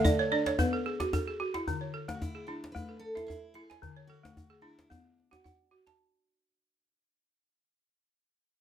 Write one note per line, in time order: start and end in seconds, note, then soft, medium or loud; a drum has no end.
0.00 0.19 A3 medium
0.00 0.56 A4 medium
0.00 0.18 E5 medium
0.05 0.30 D5 medium
0.05 djembe bass medium
0.19 0.45 C#5 medium
0.32 0.59 D4 medium
0.32 0.57 D5 medium
0.46 0.72 C#5 medium
0.46 djembe slap medium
0.59 0.86 B3 medium
0.59 0.84 B4 medium
0.59 djembe bass medium
0.73 0.98 A4 medium
0.86 1.11 G#4 medium
1.00 1.26 F#4 medium
1.00 djembe slap medium
1.00 djembe tone medium
1.13 1.38 A4 medium
1.13 djembe bass medium
1.28 1.53 G#4 medium
1.40 1.67 F#4 medium
1.54 1.80 E4 medium
1.54 djembe slap medium
1.68 1.94 D3 medium
1.68 djembe bass medium
1.81 2.21 C#5 medium
1.94 2.35 A4 medium
2.08 2.35 A3 medium
2.08 djembe slap medium
2.08 djembe tone medium
2.14 2.21 F#4 medium
2.22 2.49 E4 medium
2.22 djembe bass medium
2.35 2.75 G#4 medium
2.47 2.75 D4 medium
2.47 2.90 E4 medium
2.64 djembe slap medium
2.72 3.02 A3 medium
2.72 3.01 B4 loud
2.72 djembe bass medium
2.89 3.29 A4 medium
2.99 3.29 A4 loud
3.15 3.43 E4 medium
3.15 3.27 E5 medium
3.15 djembe slap soft
3.15 djembe tone medium
3.27 3.53 E4 loud
3.27 3.70 E5 medium
3.27 djembe bass medium
3.54 3.83 E4 medium
3.54 4.05 G#4 loud
3.70 3.97 G#5 medium
3.70 djembe slap medium
3.82 4.10 D3 medium
3.82 djembe slap soft
3.82 djembe bass medium
3.96 4.37 C#5 medium
4.07 4.59 F#4 medium
4.07 4.51 A4 medium
4.23 4.51 A3 medium
4.23 djembe slap medium
4.23 djembe tone medium
4.37 djembe bass medium
4.50 4.90 G#4 medium
4.62 4.90 D4 medium
4.62 4.88 E4 medium
4.62 5.04 E4 medium
4.79 djembe slap medium
4.90 5.18 B3 medium
4.90 5.67 D4 medium
4.90 djembe bass medium
5.20 djembe slap soft
5.31 5.59 F#4 medium
5.31 5.43 F#5 medium
5.31 djembe slap soft
5.31 djembe tone soft
5.44 5.86 F#5 medium
5.44 djembe bass medium
5.71 5.99 F#4 medium
5.87 6.13 A5 medium
5.87 djembe slap medium